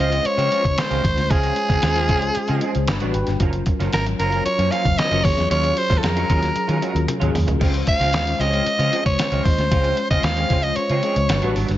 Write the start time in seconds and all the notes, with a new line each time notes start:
Already playing: G#3
0.00 C#2 F3 G#3 C4 C#4 F4 C5 D#5
0.12 F3 G#3 C4 F4, closed hi-hat
0.25 C#5, muted fingered electric bass stroke, closed hi-hat
0.37 C#3 F3 G#3 C4 F4, closed hi-hat
0.51 F3 G#3 C4 C#4 F4 D#5, closed hi-hat
0.64 C#2, muted clean electric guitar stroke, kick, closed hi-hat
0.77 C5, muted clean electric guitar stroke, snare, closed hi-hat
0.89 C#2 F3 G#3 C4 C#4 F4 C5, closed hi-hat
1.03 D#2, muted clean electric guitar stroke, kick, closed hi-hat
1.16 D2, muted clean electric guitar stroke, snare, closed hi-hat
1.30 C#2 F3 G#3 C4 C#4 F4 G#4 C#5, kick, closed hi-hat
1.43 closed hi-hat
1.56 muted clean electric guitar stroke, closed hi-hat
1.69 C#2 F3 G#3 C4 F4, kick, snare, closed hi-hat
1.82 D#2 G#3 C#4 F4 C5, muted clean electric guitar stroke, snare, closed hi-hat
1.95 F3 G#3 C4 F4, closed hi-hat
2.08 C#2 F3 G#3 C4 C#4 F4 G#4, kick, closed hi-hat
2.22 muted clean electric guitar stroke, closed hi-hat
2.35 muted clean electric guitar stroke, muted fingered electric bass stroke, closed hi-hat
2.48 C#3 F3 G#3 C4 F4, closed hi-hat
2.61 F3 G#3 C4 C#4 F4 G#4 C5, closed hi-hat
2.75 C#2, muted clean electric guitar stroke, closed hi-hat
2.87 G1 G3 D4 F#4 B4 B5, muted clean electric guitar stroke, snare, closed hi-hat
3.00 A1 F#3 G3 B3 D4 F#4 B4, closed hi-hat
3.14 G#1 G5, muted clean electric guitar stroke, closed hi-hat
3.27 G1, muted clean electric guitar stroke, snare, closed hi-hat
3.40 F#1 F3 F#3 A#3 C#4 F4 A#4, kick, closed hi-hat
3.53 muted clean electric guitar stroke, closed hi-hat
3.66 muted clean electric guitar stroke, kick, closed hi-hat
3.79 F#1 F3 A#3 C#4 F4, snare, closed hi-hat
3.93 G#1 F#3 C#4 F4 A#4, muted clean electric guitar stroke, snare, closed hi-hat
4.06 muted clean electric guitar stroke, closed hi-hat
4.19 F#1 F3 F#3 A#3 C#4 F4 A#4, closed hi-hat
4.32 F3 A#3 C#4 F4, closed hi-hat
4.45 C#5, muted fingered electric bass stroke, muted clean electric guitar stroke, closed hi-hat
4.58 F#2 F3 A#3 C#4 F4, closed hi-hat
4.71 F3 F#3 A#3 C#4 F4 C5 F5, closed hi-hat
4.85 F#1, muted clean electric guitar stroke, kick, closed hi-hat
4.98 D#5, muted clean electric guitar stroke, snare, closed hi-hat
5.11 F#1 F3 F#3 A#3 C#4 F4 A#4, closed hi-hat
5.24 D#2 F#3 C#4 F4 G#4 C#5, muted clean electric guitar stroke, kick, open hi-hat
5.37 E2, muted clean electric guitar stroke, snare, closed hi-hat
5.50 D#2 F#3 G#3 C#4 F4 C#5, closed hi-hat
5.64 closed hi-hat
5.77 C5, closed hi-hat
5.89 D#2 F#3 G#3 C#4 F4, kick, snare, closed hi-hat
5.98 A4
6.03 F2 F#3 C#4 F4 G#4 A#4, muted clean electric guitar stroke, snare, closed hi-hat
6.16 F#3 G#3 C#4 F4, closed hi-hat
6.28 D#2 F#3 G#3 C#4 F4 G#4, kick, closed hi-hat
6.42 muted clean electric guitar stroke, snare, closed hi-hat
6.55 muted clean electric guitar stroke, muted fingered electric bass stroke, closed hi-hat
6.68 D#3 F#3 G#3 C#4 F4, closed hi-hat
6.81 F#3 G#3 C#4 F4 F#4 A#4, closed hi-hat
6.94 D#2, muted clean electric guitar stroke, closed hi-hat
7.08 muted clean electric guitar stroke, closed hi-hat, high tom
7.20 D#2 F#3 G#3 C#4 F4 G#4, closed hi-hat, mid tom
7.34 D#2, muted clean electric guitar stroke, mid tom, open hi-hat
7.47 D2, muted clean electric guitar stroke, closed hi-hat, floor tom
7.60 C#2 F3 G#3 C4 C#4 F4 C5, kick, crash
7.74 muted clean electric guitar stroke, closed hi-hat
7.87 F5, muted clean electric guitar stroke, kick, closed hi-hat
8.00 C#2 F3 G#3 C4 F4, snare, closed hi-hat
8.13 D#2 G#3 C#4 F4 C5, snare, closed hi-hat
8.26 muted clean electric guitar stroke, closed hi-hat
8.39 C#2 F3 G#3 C4 C#4 F4 C#5 D#5, closed hi-hat
8.52 F3 G#3 C4 F4, closed hi-hat
8.66 muted clean electric guitar stroke, muted fingered electric bass stroke, closed hi-hat
8.79 C#3 F3 G#3 C4 F4, closed hi-hat
8.92 F3 G#3 C4 C#4 F4 C5, closed hi-hat
9.05 C#2 C#5, muted clean electric guitar stroke, kick, closed hi-hat
9.18 muted clean electric guitar stroke, snare, closed hi-hat
9.32 C#2 F3 G#3 C4 C#4 F4 D#5, closed hi-hat
9.44 D#2 C5, muted clean electric guitar stroke, kick, open hi-hat
9.58 D2, muted clean electric guitar stroke, snare, closed hi-hat
9.71 C#2 F3 G#3 C4 C#4 F4 C5, kick, closed hi-hat
9.84 closed hi-hat
9.97 muted clean electric guitar stroke, closed hi-hat
10.11 C#2 F3 G#3 C4 F4 D#5, kick, snare, closed hi-hat
10.23 D#2 G#3 C#4 F4 C5 F5, muted clean electric guitar stroke, snare, closed hi-hat
10.37 F3 G#3 C4 F4, closed hi-hat
10.50 C#2 F3 G#3 C4 C#4 F4 C5, kick, closed hi-hat
10.63 D#5, muted clean electric guitar stroke, closed hi-hat
10.76 C#5, muted fingered electric bass stroke, muted clean electric guitar stroke, closed hi-hat
10.89 C#3 F3 G#3 C4 F4, closed hi-hat
11.03 F3 G#3 C4 C#4 F4 G#4 D#5, closed hi-hat
11.16 C#2, muted clean electric guitar stroke, closed hi-hat
11.29 G1 G3 D4 F#4 B4, muted clean electric guitar stroke, snare, closed hi-hat
11.42 A1 F#3 G3 B3 D4 F#4 B4, closed hi-hat
11.55 G#1 F#3 B3 D4 F#4, open hi-hat
11.69 G1, muted clean electric guitar stroke, snare, closed hi-hat